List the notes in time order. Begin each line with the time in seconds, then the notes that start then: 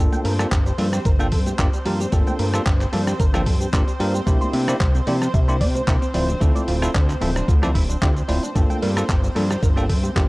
Already playing: A#3 D4
0.00 C4 F4 A4 C5
0.12 G5, closed hi-hat, high conga, cabasa
0.25 G2 A#4, open hi-hat
0.39 A#3 D4 F4 G4 A4, cross-stick, closed hi-hat, cabasa
0.52 G1 G4, kick, clap, closed hi-hat, cabasa
0.66 G3, closed hi-hat, cabasa
0.78 G2 A#3 D4 F4 A4, open hi-hat, muted conga, low conga
0.93 G4, cross-stick, closed hi-hat, cabasa
1.05 G1 A#4, kick, closed hi-hat, cabasa
1.19 A#3 D4 F4 A4 G5, closed hi-hat, cabasa
1.32 G2 A4, kick, open hi-hat
1.46 G4, closed hi-hat, muted conga, cabasa
1.58 G1 A#3 D4 F4 G4, kick, clap, closed hi-hat, cabasa
1.73 G3, closed hi-hat, cabasa
1.85 G2 A#3 D4 F4 G4 A#4, open hi-hat, low conga
2.00 G4, closed hi-hat, high conga, cabasa
2.12 G1 A#3 D4 F4 G4 A4, kick, closed hi-hat, cabasa
2.27 G5, closed hi-hat, high conga, cabasa
2.39 G2 A#4, open hi-hat
2.53 A#3 D4 F4 G4 A4, cross-stick, cabasa
2.66 G1 G4, kick, clap, closed hi-hat, cabasa
2.81 G3, clap, closed hi-hat, cabasa
2.93 G2 A#3 D4 F4 A4, open hi-hat, muted conga, low conga
3.07 G4, cross-stick, closed hi-hat, cabasa
3.20 G1 A#4, kick, closed hi-hat, cabasa
3.34 A#3 D4 F4 A4 G5, cross-stick, closed hi-hat, muted conga, low conga, cabasa
3.46 G2 A4, kick, open hi-hat
3.61 G4, closed hi-hat, cabasa
3.73 G1 A#3 D4 F4 G4, kick, clap, closed hi-hat, cabasa
3.87 G3, closed hi-hat, cabasa
4.00 G2 A#3 D4 F4 G4 A#4, open hi-hat
4.14 G4, closed hi-hat, high conga, cabasa
4.27 C2 A#3 D4 E4 G4 C5, kick, closed hi-hat, cabasa
4.41 C6, closed hi-hat, high conga, cabasa
4.53 C3 E5, open hi-hat
4.68 A#3 D4 E4 G4 C5, cross-stick, cabasa
4.80 C2 C5, kick, clap, closed hi-hat, cabasa
4.95 C4, closed hi-hat, cabasa
5.07 C3 A#3 D4 E4 G4 D5, open hi-hat, muted conga, low conga
5.22 C5, cross-stick, closed hi-hat, cabasa
5.34 C2 E5, kick, closed hi-hat, cabasa
5.48 A#3 D4 E4 G4 C6, closed hi-hat, cabasa
5.61 C3 D5, kick, open hi-hat
5.75 C5, closed hi-hat, muted conga, cabasa
5.87 C2 A#3 D4 E4 G4 C5, kick, clap, closed hi-hat, cabasa
6.02 C4, closed hi-hat, cabasa
6.14 D1 C4 D4 E4 F4 C5, open hi-hat, low conga
6.28 D4, closed hi-hat, high conga, cabasa
6.40 D2 C4 D4 E4 F4 A4, kick, closed hi-hat, cabasa
6.55 D5, closed hi-hat, high conga, cabasa
6.68 D1 F4, open hi-hat
6.82 C4 D4 E4 F4 A4, cross-stick, closed hi-hat, cabasa
6.95 D2 D4, kick, clap, closed hi-hat, cabasa
7.09 D3, clap, closed hi-hat, cabasa
7.21 D1 C4 E4 F4 A4, open hi-hat, muted conga, low conga
7.36 D4, cross-stick, closed hi-hat, cabasa
7.48 D2 F4, kick, closed hi-hat, cabasa
7.62 C4 E4 F4 A4 D5, cross-stick, closed hi-hat, muted conga, low conga, cabasa
7.75 D1 E4, kick, open hi-hat
7.89 D4, closed hi-hat, cabasa
8.02 D2 C4 D4 E4 F4 G4, kick, clap, closed hi-hat, cabasa
8.16 D3, closed hi-hat, cabasa
8.28 D1 C4 D4 E4 F4 C5, open hi-hat, high conga
8.43 D4, closed hi-hat, high conga, cabasa
8.55 G1 A#3 C4 D4 F4 G4 A4 C5, kick, closed hi-hat, cabasa
8.70 G5, closed hi-hat, high conga, cabasa
8.82 G2 A#4, open hi-hat
8.96 A#3 D4 F4 G4 A4, cross-stick, cabasa
9.09 G1 G4, kick, clap, closed hi-hat, cabasa
9.24 G3, closed hi-hat, cabasa
9.35 G2 A#3 D4 F4 A4, open hi-hat, muted conga, low conga
9.50 G4, cross-stick, closed hi-hat, cabasa
9.63 G1 A#4, kick, closed hi-hat, cabasa
9.76 A#3 D4 F4 A4 G5, closed hi-hat, cabasa
9.89 G2 A4, kick, open hi-hat
10.03 G4, closed hi-hat, muted conga, cabasa
10.15 G1 A#3 D4 F4 G4, kick, clap, closed hi-hat, cabasa